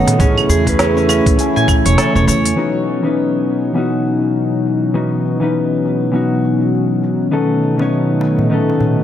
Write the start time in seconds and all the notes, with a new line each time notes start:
Already playing: C#3 D#3 F#3 A3 B3 C#4 D#4 F#4 A4 C#5
0.07 open hi-hat, darbuka tek, darbuka dum, cabasa
0.19 A1 E3 A3 C#4 E4 G#4, kick, open hi-hat, cabasa
0.38 cabasa, claves
0.49 E2 G#4, cabasa
0.65 E3 A3 C#4, kick, open hi-hat, darbuka tek, cabasa
0.69 B4
0.79 C#4, snare, open hi-hat, cabasa
0.97 C#4, darbuka ka, cabasa
1.09 C#4, darbuka tek, cabasa, claves
1.26 A2, kick, open hi-hat, cabasa
1.37 E3 A3 C#4 G#5, open hi-hat, cabasa
1.56 G#5, darbuka ka, darbuka dum, cabasa
1.68 kick, darbuka tek, cabasa, claves
1.85 E1 C#5, open hi-hat, darbuka ka, darbuka tek, cabasa
1.98 A4, snare, open hi-hat, cabasa
2.15 E1 C#5, darbuka ka, cabasa
2.27 E2 C#5, darbuka ka, cabasa
2.45 open hi-hat, cabasa
2.56 B2 E3 F#3 B3 C#4 D#4 F#4, cabasa
2.88 cabasa
3.03 E3 B3 C#4 D#4 B4
3.17 cabasa
3.35 cabasa
3.47 cabasa
3.65 cabasa
3.74 E3 B3 C#4 D#4 F#4, cabasa
4.06 cabasa
4.24 cabasa
4.36 cabasa
4.54 cabasa
4.66 cabasa
4.83 cabasa
4.94 E3 B3 C#4 D#4 F#4, cabasa
5.13 cabasa
5.25 cabasa
5.40 E3 B3 C#4 D#4, cabasa
5.44 B4
5.55 cabasa
5.73 cabasa
5.85 cabasa
6.02 cabasa
6.12 E3 B3 C#4 D#4, cabasa
6.16 F#4
6.32 cabasa
6.44 cabasa
6.62 cabasa
6.74 cabasa
6.91 cabasa
7.03 cabasa
7.21 cabasa
7.31 D#3 A3 B3 C#4 D#4 A4, cabasa
7.51 cabasa
7.63 cabasa
7.78 D#3 B3 C#4, darbuka tek, cabasa
7.82 C#5
7.92 cabasa
8.10 cabasa
8.21 darbuka tek, cabasa
8.39 darbuka dum, cabasa
8.50 D#3 B3 C#4, cabasa
8.54 A4
8.69 darbuka ka, cabasa
8.80 darbuka dum, cabasa
8.99 cabasa